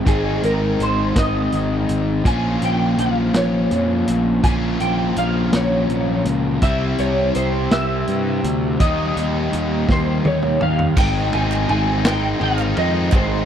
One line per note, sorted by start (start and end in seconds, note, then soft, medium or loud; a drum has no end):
0.06 0.38 G#1 medium
0.06 2.23 G#2 medium
0.06 2.24 D#3 medium
0.06 2.24 G#3 medium
0.06 2.24 C4 medium
0.06 2.25 D#4 medium
0.06 0.41 G#4 medium
0.06 kick loud
0.06 closed hi-hat medium
0.43 0.75 G#1 medium
0.43 0.82 A#4 medium
0.43 closed hi-hat medium
0.80 1.11 G#1 medium
0.80 1.15 C5 medium
0.80 closed hi-hat medium
1.16 1.48 G#1 medium
1.16 1.95 D#5 medium
1.16 kick medium
1.16 snare loud
1.16 closed hi-hat medium
1.52 1.84 G#1 medium
1.52 closed hi-hat medium
1.89 2.21 G#1 medium
1.89 closed hi-hat medium
2.25 2.57 A#1 medium
2.25 4.42 A#2 medium
2.25 4.43 F3 medium
2.25 4.43 A#3 medium
2.25 4.43 C#4 medium
2.25 4.43 F4 medium
2.25 2.61 G#5 medium
2.25 kick loud
2.25 closed hi-hat medium
2.62 2.93 A#1 medium
2.62 2.97 G5 medium
2.62 closed hi-hat medium
2.98 3.30 A#1 medium
2.98 3.37 F5 medium
2.98 closed hi-hat medium
3.34 3.66 A#1 medium
3.34 4.05 C#5 medium
3.34 snare loud
3.34 closed hi-hat medium
3.71 4.03 F2 medium
3.71 closed hi-hat medium
4.07 4.40 A#1 medium
4.07 closed hi-hat medium
4.43 4.76 A#1 medium
4.43 6.60 A#2 medium
4.43 6.61 F3 medium
4.43 6.61 A#3 medium
4.43 6.61 C#4 medium
4.43 6.62 F4 medium
4.43 4.54 G#5 medium
4.43 kick loud
4.43 closed hi-hat medium
4.80 5.12 A#1 medium
4.80 5.17 G5 medium
4.80 closed hi-hat medium
5.16 5.49 A#1 medium
5.16 5.55 F5 medium
5.16 closed hi-hat medium
5.53 5.85 A#1 medium
5.53 6.23 C#5 medium
5.53 snare loud
5.53 closed hi-hat medium
5.89 6.21 A#1 medium
5.89 closed hi-hat medium
6.25 6.57 C#2 medium
6.25 closed hi-hat medium
6.62 6.94 C2 medium
6.62 8.78 C3 medium
6.62 8.79 G3 medium
6.62 8.79 C4 medium
6.62 8.79 E4 medium
6.62 7.00 E5 loud
6.62 kick loud
6.62 closed hi-hat medium
6.98 7.30 C2 medium
6.98 7.35 C#5 medium
6.98 closed hi-hat medium
7.35 7.67 C2 medium
7.35 7.69 C5 medium
7.35 closed hi-hat medium
7.71 8.03 C2 medium
7.71 8.79 E5 medium
7.71 snare loud
7.71 closed hi-hat medium
8.07 8.39 G2 medium
8.07 closed hi-hat medium
8.44 8.75 D2 medium
8.44 closed hi-hat medium
8.80 9.11 D#2 medium
8.80 10.95 D#3 medium
8.80 10.95 G3 medium
8.80 10.96 A#3 medium
8.80 10.96 D#4 loud
8.80 10.57 D#5 medium
8.80 kick loud
8.80 closed hi-hat medium
9.17 9.48 D#2 medium
9.17 closed hi-hat medium
9.53 9.84 D#2 medium
9.53 closed hi-hat medium
9.89 10.20 D#2 medium
9.89 10.24 C5 medium
9.89 kick medium
9.89 snare medium
10.25 10.56 D#2 medium
10.25 10.63 C#5 medium
10.25 high tom medium
10.42 mid tom medium
10.61 10.93 D#2 medium
10.61 10.98 F5 loud
10.61 mid tom medium
10.79 floor tom medium
10.96 11.29 G#1 loud
10.96 13.12 G#2 medium
10.96 11.68 D#3 medium
10.96 11.35 G#3 loud
10.96 11.34 C4 medium
10.96 11.33 D#4 loud
10.96 11.34 G5 medium
10.96 kick loud
10.96 clap medium
10.96 crash loud
11.33 11.65 G#1 medium
11.33 11.69 G#3 medium
11.33 11.70 C4 medium
11.33 11.71 D#4 medium
11.33 11.67 G#5 loud
11.33 ride medium
11.52 clap medium
11.69 12.32 G#1 medium
11.69 12.39 D#3 medium
11.69 12.06 G#3 medium
11.69 12.05 C4 medium
11.69 12.04 D#4 medium
11.69 12.03 G#5 loud
11.69 ride medium
12.05 12.40 G#3 medium
12.05 12.40 C4 medium
12.05 12.41 D#4 medium
12.05 12.39 G5 medium
12.05 snare loud
12.05 clap loud
12.05 ride loud
12.40 12.73 G#1 medium
12.40 13.12 D#3 medium
12.40 12.78 G#3 medium
12.40 12.77 C4 medium
12.40 12.75 D#4 medium
12.40 12.79 F5 loud
12.40 ride medium
12.59 clap medium
12.76 13.09 F2 medium
12.76 13.12 G#3 medium
12.76 13.12 C4 medium
12.76 13.13 D#4 medium
12.76 13.15 D#5 loud
12.76 ride medium
13.12 13.44 G#1 loud
13.12 13.45 G#2 loud
13.12 13.45 D#3 medium
13.12 13.45 G#3 loud
13.12 13.45 C4 loud
13.12 13.45 D#4 loud
13.12 13.45 C5 medium
13.12 kick loud
13.12 clap loud
13.12 ride medium